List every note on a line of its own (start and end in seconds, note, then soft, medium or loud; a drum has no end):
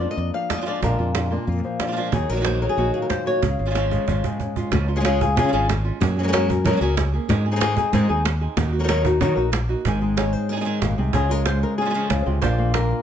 0.00 0.17 G#3 soft
0.00 1.32 A#3 medium
0.00 0.81 D4 soft
0.00 0.17 D4 soft
0.00 0.16 F4 soft
0.00 0.18 C5 medium
0.00 0.10 D5 medium
0.11 0.34 D#5 medium
0.17 0.30 F2 medium
0.17 muted nylon-string guitar stroke soft
0.34 0.81 F3 medium
0.34 0.50 F5 medium
0.34 cajon slap soft
0.49 0.56 F3 soft
0.49 0.56 G#3 soft
0.49 0.56 D4 soft
0.49 0.57 F4 soft
0.49 0.66 D#5 medium
0.49 cajon bass soft
0.49 cajon slap medium
0.57 0.60 F3 soft
0.57 0.60 G#3 soft
0.57 0.61 D4 soft
0.57 0.61 F4 soft
0.61 0.64 F3 soft
0.61 0.65 G#3 soft
0.61 0.65 D4 soft
0.61 0.66 F4 medium
0.66 0.81 F3 medium
0.66 0.81 G#3 medium
0.66 0.82 D4 medium
0.66 0.82 F4 medium
0.66 0.83 D5 medium
0.82 0.95 A#1 medium
0.82 2.11 A#2 medium
0.82 0.98 F3 medium
0.82 0.98 G#3 medium
0.82 0.98 D4 medium
0.82 0.97 F4 medium
0.82 1.81 A#4 medium
0.82 cajon bass medium
0.99 1.36 F2 medium
0.99 1.15 G#3 soft
0.99 1.14 D4 soft
0.99 1.14 F4 soft
0.99 cajon slap soft
1.15 1.31 G#3 soft
1.15 1.31 D4 soft
1.15 1.29 F4 soft
1.15 cajon slap medium
1.31 1.46 G#3 soft
1.31 2.11 A#3 medium
1.31 1.46 D4 soft
1.31 1.47 F4 soft
1.47 1.60 F2 medium
1.47 1.96 F4 soft
1.47 muted nylon-string guitar stroke soft
1.47 cajon slap soft
1.64 2.11 F3 medium
1.64 cajon slap soft
1.80 1.86 F3 soft
1.80 1.87 G#3 soft
1.80 1.87 D4 soft
1.80 2.11 D4 soft
1.80 1.87 F4 soft
1.80 cajon slap medium
1.87 1.91 F3 soft
1.87 1.91 G#3 soft
1.87 1.92 D4 soft
1.87 1.92 F4 soft
1.92 1.95 F3 soft
1.92 1.96 G#3 soft
1.92 1.96 D4 medium
1.92 1.96 F4 medium
1.96 2.12 F3 medium
1.96 2.12 G#3 medium
1.96 2.12 D4 medium
1.96 2.11 F4 soft
1.96 2.13 F4 medium
2.12 2.25 D#2 medium
2.12 3.41 D#3 medium
2.12 2.61 F#3 soft
2.12 3.41 D#4 soft
2.12 2.77 F#4 soft
2.12 2.29 G#4 medium
2.12 muted nylon-string guitar stroke medium
2.12 cajon bass medium
2.29 2.66 A#1 medium
2.29 2.35 D#3 soft
2.29 2.35 A#3 soft
2.29 2.36 D#4 soft
2.29 2.36 F#4 soft
2.29 2.45 A#4 medium
2.29 cajon slap soft
2.36 2.39 D#3 soft
2.36 2.40 A#3 soft
2.36 2.40 D#4 soft
2.36 2.41 F#4 medium
2.41 2.44 D#3 medium
2.41 2.44 A#3 medium
2.41 2.44 D#4 medium
2.41 2.45 F#4 medium
2.45 2.76 D#3 medium
2.45 2.77 A#3 medium
2.45 2.77 D#4 medium
2.45 2.78 F#4 medium
2.45 2.62 C5 medium
2.45 cajon slap medium
2.62 3.43 F#3 medium
2.62 2.69 A#4 medium
2.69 2.93 G#4 medium
2.77 2.90 A#1 medium
2.77 3.09 D#3 medium
2.77 3.09 A#3 medium
2.77 3.10 D#4 medium
2.77 3.27 F#4 medium
2.77 3.10 F#4 medium
2.94 3.41 A#2 medium
2.94 3.02 G#4 medium
3.02 3.09 A#4 medium
3.10 3.26 C5 medium
3.10 muted nylon-string guitar stroke medium
3.10 cajon bass medium
3.10 cajon slap medium
3.26 3.43 A#3 soft
3.26 3.42 D#4 soft
3.26 3.42 F#4 soft
3.26 4.73 C#5 medium
3.42 3.55 C#2 medium
3.42 4.24 C#3 medium
3.42 3.58 F4 soft
3.42 muted nylon-string guitar stroke medium
3.42 cajon bass medium
3.59 3.96 G#1 medium
3.59 4.08 F4 soft
3.59 cajon slap soft
3.66 3.69 F3 soft
3.66 3.69 G#3 soft
3.66 3.70 C#4 soft
3.66 3.70 F4 soft
3.70 3.74 F3 soft
3.70 3.74 G#3 medium
3.70 3.74 C#4 medium
3.70 3.75 F4 medium
3.75 4.05 C#3 medium
3.75 4.06 F3 medium
3.75 4.07 G#3 medium
3.75 4.07 C#4 medium
3.75 4.07 F4 medium
3.75 cajon slap medium
3.91 4.70 G#3 soft
3.91 cajon bass medium
4.07 4.20 G#1 medium
4.07 4.39 C#3 soft
4.07 4.39 F3 medium
4.07 4.39 G#3 medium
4.07 4.40 C#4 medium
4.07 4.40 F4 medium
4.07 4.56 F4 soft
4.07 cajon bass medium
4.24 4.71 G#2 medium
4.24 cajon bass medium
4.40 4.71 C#4 soft
4.40 muted nylon-string guitar stroke soft
4.40 cajon bass medium
4.56 4.72 G#3 soft
4.56 4.72 C#4 soft
4.56 4.72 F4 soft
4.56 4.71 F4 soft
4.56 cajon bass medium
4.72 5.38 C#2 medium
4.72 4.88 C#3 medium
4.72 4.88 F3 medium
4.72 4.88 G#3 medium
4.72 4.88 C#4 medium
4.72 4.87 F4 medium
4.72 muted nylon-string guitar stroke medium
4.72 cajon bass medium
4.72 cajon slap soft
4.88 5.05 G#3 soft
4.88 5.04 C#4 soft
4.88 5.03 F4 soft
4.88 cajon slap soft
4.96 4.99 G#3 medium
4.96 4.99 C#4 medium
4.96 5.00 F4 medium
4.96 5.00 G#4 medium
5.00 5.04 G#3 medium
5.00 5.04 C#4 medium
5.00 5.05 F4 medium
5.00 5.36 F4 soft
5.00 5.05 G#4 medium
5.05 5.20 C#3 medium
5.05 5.20 G#3 medium
5.05 5.36 G#3 soft
5.05 5.36 C#4 soft
5.05 5.20 C#4 medium
5.05 5.21 F4 medium
5.05 5.20 G#4 medium
5.05 cajon slap medium
5.21 5.37 C#4 soft
5.21 5.37 F4 soft
5.21 5.36 G#4 medium
5.21 cajon bass medium
5.36 5.49 C#3 medium
5.36 5.52 C#3 medium
5.36 5.53 G#3 medium
5.36 5.53 C#4 medium
5.36 5.52 F4 medium
5.36 5.51 G#4 medium
5.36 muted nylon-string guitar stroke medium
5.36 cajon bass medium
5.44 5.47 F3 soft
5.44 5.48 G#3 soft
5.44 5.48 C#4 soft
5.44 5.48 F4 soft
5.48 5.52 F3 medium
5.48 5.52 G#3 medium
5.48 5.52 C#4 medium
5.48 5.53 F4 medium
5.53 5.90 G#1 medium
5.53 5.68 C#3 medium
5.53 5.67 F3 medium
5.53 5.68 G#3 medium
5.53 5.68 C#4 medium
5.53 5.69 C#4 soft
5.53 5.69 F4 medium
5.53 5.68 G#4 medium
5.53 cajon slap soft
5.69 5.84 F3 soft
5.69 5.84 G#3 soft
5.69 5.84 C#4 soft
5.69 5.83 F4 soft
5.69 muted nylon-string guitar stroke medium
5.69 cajon bass medium
5.69 cajon slap medium
5.84 6.00 G#3 soft
5.84 6.00 C#4 soft
5.84 6.00 F4 soft
6.00 6.66 F#2 medium
6.00 6.16 F#3 medium
6.00 6.16 A#3 medium
6.00 6.16 C#4 medium
6.00 6.16 G#4 medium
6.00 muted nylon-string guitar stroke medium
6.00 cajon bass loud
6.17 6.22 G#3 medium
6.17 6.33 A#3 soft
6.17 6.32 C#4 soft
6.17 6.23 C#4 medium
6.17 6.23 F#4 medium
6.17 6.31 G#4 soft
6.17 6.23 A#4 medium
6.23 6.27 G#3 medium
6.23 6.27 C#4 medium
6.23 6.27 F#4 medium
6.23 6.28 A#4 medium
6.28 6.31 G#3 medium
6.28 6.32 C#4 medium
6.28 6.32 F#4 medium
6.28 6.32 A#4 medium
6.32 6.48 F#3 medium
6.32 6.48 G#3 medium
6.32 6.64 A#3 soft
6.32 6.48 C#4 medium
6.32 6.65 C#4 soft
6.32 6.48 F#4 loud
6.32 6.64 G#4 soft
6.32 6.48 A#4 loud
6.32 cajon slap medium
6.49 6.65 C#4 soft
6.49 6.65 F#4 soft
6.49 6.64 A#4 medium
6.49 cajon bass medium
6.64 6.77 F#3 loud
6.64 6.80 F#3 medium
6.64 6.81 G#3 medium
6.64 6.81 C#4 medium
6.64 6.81 F#4 medium
6.64 6.80 A#4 loud
6.64 muted nylon-string guitar stroke medium
6.64 cajon bass medium
6.72 6.75 F#3 soft
6.72 6.76 A#3 soft
6.72 6.76 C#4 soft
6.72 6.77 G#4 medium
6.77 7.18 C#2 medium
6.77 6.80 F#3 soft
6.77 6.80 A#3 medium
6.77 6.81 C#4 medium
6.77 6.81 G#4 medium
6.81 6.96 F#3 medium
6.81 6.97 A#3 medium
6.81 6.97 C#4 medium
6.81 6.96 C#4 soft
6.81 6.96 F#4 soft
6.81 6.97 G#4 medium
6.81 6.96 A#4 medium
6.81 cajon slap soft
6.97 7.12 F#3 soft
6.97 7.13 A#3 soft
6.97 7.13 C#4 soft
6.97 7.12 G#4 soft
6.97 muted nylon-string guitar stroke medium
6.97 cajon bass medium
6.97 cajon slap medium
7.13 7.29 A#3 soft
7.13 7.29 C#4 soft
7.13 7.29 G#4 soft
7.28 7.78 G#2 medium
7.28 7.45 D#3 medium
7.28 7.45 G#3 medium
7.28 7.45 C4 medium
7.28 7.45 D#4 medium
7.28 7.44 G#4 medium
7.28 muted nylon-string guitar stroke medium
7.28 cajon bass medium
7.28 cajon slap soft
7.46 7.61 C4 soft
7.46 7.61 D#4 soft
7.46 7.61 G#4 soft
7.46 cajon slap soft
7.51 7.55 G#3 medium
7.51 7.55 C4 soft
7.51 7.55 D#4 medium
7.51 7.56 G#4 medium
7.56 7.59 G#3 medium
7.56 7.59 C4 medium
7.56 7.60 D#4 medium
7.56 7.60 G#4 medium
7.60 7.76 D#3 medium
7.60 7.76 G#3 medium
7.60 7.76 C4 medium
7.60 7.76 D#4 medium
7.60 7.76 G#4 medium
7.60 muted nylon-string guitar stroke medium
7.60 cajon slap medium
7.77 7.92 C4 soft
7.77 7.93 C4 soft
7.77 7.93 D#4 medium
7.77 7.93 D#4 soft
7.77 7.92 G#4 medium
7.77 7.93 G#4 soft
7.77 cajon bass medium
7.93 8.05 G#2 medium
7.93 8.08 D#3 medium
7.93 8.09 D#3 medium
7.93 8.08 G#3 medium
7.93 8.09 G#3 medium
7.93 8.09 C4 medium
7.93 8.09 D#4 medium
7.93 8.08 G#4 medium
7.93 cajon bass medium
8.09 8.46 D#2 medium
8.09 8.24 C4 soft
8.09 8.24 D#4 medium
8.09 8.25 D#4 soft
8.09 8.24 G#4 medium
8.09 8.25 G#4 soft
8.09 cajon slap soft
8.25 muted nylon-string guitar stroke medium
8.25 cajon slap medium
8.41 8.57 C4 soft
8.41 8.57 D#4 soft
8.41 8.56 G#4 soft
8.56 9.22 D#2 medium
8.56 8.72 D#3 medium
8.56 8.73 A#3 medium
8.56 8.72 D#4 medium
8.56 8.71 F#4 medium
8.56 muted nylon-string guitar stroke medium
8.56 cajon bass loud
8.72 8.88 A#3 soft
8.72 8.88 D#4 soft
8.72 8.88 F#4 soft
8.72 cajon slap soft
8.79 8.82 F#3 medium
8.79 8.83 D#4 medium
8.79 8.83 F#4 medium
8.79 8.83 A#4 medium
8.84 8.87 F#3 medium
8.84 8.87 D#4 medium
8.84 8.88 F#4 medium
8.84 8.88 A#4 medium
8.88 9.04 D#3 medium
8.88 9.04 F#3 medium
8.88 9.04 D#4 medium
8.88 9.04 F#4 medium
8.88 9.03 A#4 loud
8.88 muted nylon-string guitar stroke soft
8.88 cajon slap medium
9.04 9.20 A#3 soft
9.04 9.20 D#4 soft
9.04 9.20 F#4 soft
9.04 9.21 F#4 soft
9.04 9.20 A#4 medium
9.04 cajon bass medium
9.20 9.33 D#3 medium
9.20 9.36 D#3 medium
9.20 9.36 F#3 medium
9.20 9.36 A#3 medium
9.20 9.36 D#4 medium
9.20 9.37 D#4 medium
9.20 9.35 F#4 medium
9.20 9.36 F#4 medium
9.20 9.34 A#4 medium
9.20 cajon bass medium
9.35 9.73 A#1 medium
9.35 9.52 A#3 soft
9.35 9.51 D#4 soft
9.35 9.52 D#4 soft
9.35 9.51 F#4 soft
9.35 9.52 F#4 soft
9.35 9.52 A#4 medium
9.35 cajon slap soft
9.53 muted nylon-string guitar stroke soft
9.53 cajon slap medium
9.69 9.85 A#3 soft
9.69 9.85 D#4 soft
9.69 9.84 F#4 soft
9.85 10.34 G#1 medium
9.85 10.81 G#2 medium
9.85 10.00 D#3 medium
9.85 10.01 G#3 medium
9.85 10.01 C4 medium
9.85 10.01 D#4 medium
9.85 10.00 G#4 medium
9.85 cajon bass medium
10.01 11.12 G#3 medium
10.01 10.17 C4 soft
10.01 10.17 D#4 soft
10.01 10.16 G#4 soft
10.01 cajon slap soft
10.17 10.48 C4 soft
10.17 10.49 D#4 soft
10.17 10.48 G#4 soft
10.17 10.33 C#5 medium
10.17 cajon slap medium
10.33 10.49 C5 medium
10.49 10.54 G#3 soft
10.49 10.55 C4 soft
10.49 10.55 D#4 soft
10.49 10.56 G#4 soft
10.49 11.13 A#4 medium
10.49 muted nylon-string guitar stroke soft
10.56 10.59 G#3 soft
10.56 10.60 C4 soft
10.56 10.60 D#4 medium
10.56 10.61 G#4 soft
10.60 10.64 G#3 medium
10.60 10.64 C4 medium
10.60 10.65 D#4 medium
10.60 10.65 G#4 medium
10.65 10.80 D#3 medium
10.65 10.80 G#3 medium
10.65 10.80 C4 medium
10.65 10.81 D#4 medium
10.65 10.81 G#4 medium
10.65 cajon slap soft
10.81 10.94 G#1 medium
10.81 10.98 A#2 medium
10.81 10.97 G#3 soft
10.81 10.97 C4 soft
10.81 10.97 D#4 soft
10.81 10.97 G#4 soft
10.81 cajon bass medium
10.81 cajon slap medium
10.98 11.10 C2 medium
10.98 11.14 C3 medium
10.98 11.14 C4 soft
10.98 11.13 D#4 soft
10.98 11.13 G#4 soft
11.13 11.63 C#2 medium
11.13 12.09 C#3 medium
11.13 11.29 C#3 medium
11.13 11.29 F3 medium
11.13 11.29 G#3 medium
11.13 11.29 C#4 medium
11.13 11.28 F4 medium
11.13 11.31 G#4 medium
11.13 cajon bass medium
11.29 12.40 G#3 medium
11.29 11.45 G#3 soft
11.29 11.45 C#4 soft
11.29 11.44 F4 soft
11.29 11.45 A#4 medium
11.45 11.77 G#3 soft
11.45 11.77 C#4 soft
11.45 11.77 F4 soft
11.45 11.62 C5 medium
11.45 cajon slap medium
11.63 11.78 A#4 medium
11.78 11.84 F3 soft
11.78 11.84 G#3 soft
11.78 11.85 C#4 soft
11.78 11.85 F4 medium
11.78 12.41 G#4 medium
11.78 muted nylon-string guitar stroke medium
11.78 cajon slap soft
11.85 11.88 F3 soft
11.85 11.89 G#3 medium
11.85 11.89 C#4 medium
11.85 11.90 F4 medium
11.90 11.93 F3 medium
11.90 11.94 G#3 medium
11.90 11.94 C#4 medium
11.90 11.94 F4 medium
11.94 12.10 C#3 medium
11.94 12.09 F3 medium
11.94 12.10 G#3 medium
11.94 12.10 C#4 medium
11.94 12.10 F4 medium
11.94 cajon slap soft
12.10 12.22 C#2 medium
12.10 12.26 C#3 medium
12.10 12.26 F3 soft
12.10 12.26 G#3 soft
12.10 12.26 C#4 soft
12.10 12.25 F4 soft
12.10 cajon bass medium
12.10 cajon slap medium
12.26 12.38 C#2 medium
12.26 12.42 C3 medium
12.26 12.42 G#3 soft
12.26 12.42 C#4 soft
12.26 12.42 F4 soft
12.42 12.92 A#1 medium
12.42 13.02 A#2 medium
12.42 12.74 F3 medium
12.42 12.74 A#3 medium
12.42 12.73 D4 medium
12.42 12.73 F4 medium
12.42 12.74 C5 medium
12.42 cajon bass medium
12.58 13.02 A#3 medium
12.74 13.02 A#3 soft
12.74 13.02 D4 soft
12.74 13.02 F4 soft
12.74 13.02 A#4 medium
12.74 cajon slap medium
12.91 13.02 F4 soft